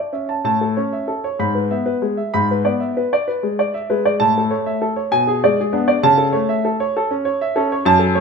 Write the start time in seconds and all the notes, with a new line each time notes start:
Already playing: D5
0.13 C#4 E5
0.29 A5
0.44 A2 A5
0.61 A4
0.77 C#4 C#5
0.93 E5
1.08 A4
1.24 C#5
1.39 G#2 B5
1.55 B4
1.71 B3 E5
1.86 B4
2.02 G#3
2.17 E5
2.34 G#2 B5
2.51 B4
2.65 B3 D5
2.80 E5
2.97 B4
3.13 D5
3.28 B4
3.43 G#3
3.59 D5
3.74 E5
3.90 G#3 B4
4.05 D5
4.20 A2 A5
4.38 A4
4.50 A3 C#5
4.66 E5
4.82 A4
4.96 C#5
5.11 B2 G#5
5.27 G#4
5.44 G#3 D5
5.60 G#4
5.73 B3 D4
5.88 D5
6.03 C#3 A5
6.18 A4
6.32 A3 C#5
6.49 E5
6.65 A4
6.80 C#5
6.97 A4
7.11 C#4
7.25 C#5
7.41 E5
7.56 C#4 A4
7.72 C#5
7.85 F#2 A5
7.99 A4
8.15 A3 C#5